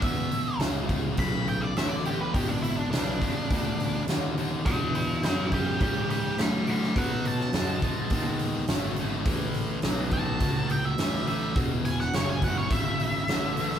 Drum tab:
HH |o-o-o-o-o-o-o-o-|o-o-o-o-o-o-o-o-|o-o-o-o-o-o-o-o-|o-o-o-o-o-o-o-o-|
SD |----o-------o---|----o-------o---|----o-------o--o|---oo-------o---|
BD |o-----o-o-------|o-----o-o-------|o-----o-o-------|o-----o-o-------|

HH |o-o-o-o-o-o-o-o-|o-o-o-o-o-o-o-o-|
SD |----o-------o---|---oo-------o--o|
BD |o-----o-o-------|o-----o-o-------|